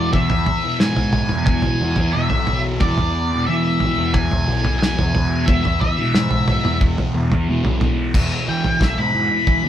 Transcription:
0.00 0.11 E2 medium
0.00 0.13 B2 medium
0.00 0.14 E3 medium
0.00 0.12 D5 medium
0.12 0.80 E2 medium
0.12 0.45 E2 medium
0.12 0.29 B2 medium
0.12 0.29 E3 medium
0.12 0.76 E5 medium
0.12 kick loud
0.12 floor tom medium
0.29 muted distorted electric guitar stroke medium
0.29 floor tom medium
0.46 floor tom medium
0.64 0.81 B2 medium
0.64 0.82 E3 medium
0.80 1.13 E2 medium
0.80 1.28 G#2 medium
0.80 1.14 B2 loud
0.80 1.16 E3 medium
0.80 1.44 G#5 medium
0.80 snare medium
0.96 floor tom medium
1.13 1.81 E2 medium
1.13 1.66 B2 medium
1.13 1.64 E3 medium
1.13 floor tom medium
1.13 mid tom medium
1.29 1.63 E2 medium
1.29 mid tom medium
1.46 2.16 G#5 loud
1.46 kick loud
1.46 floor tom medium
1.62 1.84 E3 medium
1.62 floor tom medium
1.67 1.82 B2 medium
1.81 2.28 E2 medium
1.81 2.14 E2 medium
1.81 1.98 B2 medium
1.81 1.98 E3 medium
1.96 muted distorted electric guitar stroke soft
1.96 floor tom medium
2.13 2.48 E2 medium
2.13 2.34 B2 medium
2.13 2.60 E5 medium
2.18 2.31 E3 medium
2.30 2.78 B1 medium
2.30 2.52 E3 medium
2.30 floor tom medium
2.35 2.50 B2 medium
2.47 2.82 E2 medium
2.47 2.82 B2 medium
2.47 floor tom medium
2.52 2.85 E3 medium
2.80 3.44 E2 medium
2.80 3.48 E2 medium
2.80 2.99 B2 medium
2.80 3.46 D5 medium
2.80 kick loud
2.80 floor tom medium
2.85 2.99 E3 loud
2.98 muted distorted electric guitar stroke soft
2.98 floor tom medium
3.32 3.50 B2 medium
3.32 3.52 E3 medium
3.47 3.82 E2 medium
3.47 3.79 E3 medium
3.47 4.16 E5 medium
3.51 3.83 B2 medium
3.51 3.85 E3 loud
3.80 4.48 E2 medium
3.80 floor tom medium
3.84 4.34 B2 medium
3.84 4.32 E3 medium
3.98 4.45 E2 medium
4.14 4.78 G#5 loud
4.14 kick loud
4.14 floor tom medium
4.14 mid tom medium
4.31 4.49 B2 medium
4.31 4.50 E3 medium
4.31 floor tom medium
4.48 4.95 B1 medium
4.48 4.81 E2 medium
4.48 4.65 B2 medium
4.48 4.66 E3 medium
4.65 muted distorted electric guitar stroke soft
4.65 floor tom medium
4.79 5.13 E2 medium
4.79 4.99 B2 loud
4.79 5.49 G#5 loud
4.79 snare medium
4.84 4.97 E3 loud
4.97 5.45 E2 medium
4.97 5.15 B2 medium
4.97 5.16 E3 medium
4.97 floor tom medium
5.14 5.46 E2 medium
5.14 5.48 B2 medium
5.14 5.49 E3 medium
5.14 floor tom medium
5.46 5.98 E2 medium
5.46 5.79 E2 medium
5.46 5.65 B2 medium
5.46 5.64 E3 loud
5.46 5.78 E5 medium
5.46 kick loud
5.46 floor tom medium
5.65 muted distorted electric guitar stroke soft
5.65 floor tom medium
5.81 6.77 E5 medium
5.81 floor tom medium
5.98 6.15 B2 medium
5.98 6.17 E3 medium
6.15 6.47 E2 medium
6.15 6.61 G#2 medium
6.15 6.50 B2 medium
6.15 6.51 E3 medium
6.15 snare medium
6.31 floor tom medium
6.48 7.15 E2 medium
6.48 7.01 B2 medium
6.48 floor tom medium
6.48 mid tom medium
6.52 6.98 E3 medium
6.65 6.96 E2 medium
6.65 mid tom medium
6.81 kick loud
6.81 floor tom medium
6.98 7.16 B2 medium
6.98 7.17 E3 medium
6.98 floor tom medium
7.14 7.61 E2 medium
7.14 7.48 E2 medium
7.14 7.32 B2 medium
7.18 7.31 E3 medium
7.32 muted distorted electric guitar stroke soft
7.32 floor tom medium
7.49 7.80 E2 medium
7.49 7.67 B2 medium
7.49 7.64 E3 medium
7.64 8.11 B1 medium
7.64 7.83 E3 medium
7.64 floor tom medium
7.69 7.82 B2 medium
7.81 8.12 E2 medium
7.81 8.13 B2 medium
7.81 8.14 E3 medium
7.81 floor tom medium
8.14 8.45 E2 medium
8.14 8.30 E2 medium
8.14 8.46 B2 medium
8.14 8.48 E3 medium
8.14 kick loud
8.14 floor tom medium
8.14 crash loud
8.46 8.79 E2 medium
8.46 8.64 B2 medium
8.46 8.79 E3 medium
8.46 8.62 E3 medium
8.46 8.81 G5 medium
8.63 8.79 B2 medium
8.63 8.82 E3 medium
8.63 floor tom medium
8.79 8.96 B1 medium
8.79 9.11 E2 medium
8.79 9.12 B2 medium
8.79 9.14 E3 medium
8.79 8.98 E5 medium
8.79 kick loud
8.79 snare medium
8.79 mid tom medium
8.97 9.29 G#2 medium
8.97 9.69 B5 medium
9.12 9.69 E2 medium
9.12 9.64 B2 medium
9.12 9.63 E3 medium
9.47 9.63 E3 medium
9.47 kick loud
9.47 floor tom medium
9.63 9.69 B2 medium
9.63 9.69 E3 medium

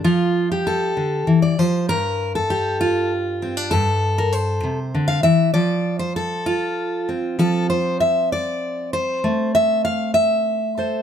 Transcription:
0.04 0.96 F3 medium
0.04 0.51 F4 medium
0.52 1.28 G4 medium
0.67 1.42 A4 medium
0.97 1.27 D3 medium
1.27 1.58 E3 medium
1.42 1.59 D5 medium
1.59 1.89 F3 medium
1.59 1.89 C5 medium
1.89 3.72 G2 medium
1.89 2.35 A#4 loud
2.35 3.11 A4 medium
2.50 2.80 G4 medium
2.81 3.72 F4 medium
3.42 3.57 C4 soft
3.57 3.72 D4 soft
3.71 4.63 G2 medium
3.71 4.78 A4 loud
4.18 4.33 A#4 medium
4.33 5.55 C5 loud
4.63 4.94 C3 medium
4.95 5.24 D3 medium
5.08 5.23 F5 loud
5.23 5.54 E3 medium
5.23 5.53 E5 loud
5.54 7.35 F3 medium
5.54 5.99 D5 loud
5.99 6.15 C5 medium
6.16 7.08 A4 medium
6.46 7.78 F4 medium
7.09 10.59 C4 soft
7.39 9.20 F3 medium
7.39 7.69 A4 loud
7.70 8.00 C5 medium
8.00 8.31 E5 medium
8.32 8.93 D5 medium
8.93 9.54 C5 medium
9.24 11.02 A3 medium
9.55 9.84 E5 loud
9.85 10.14 F5 loud
10.14 11.02 E5 loud
10.78 11.02 A4 soft
10.78 11.02 C5 soft

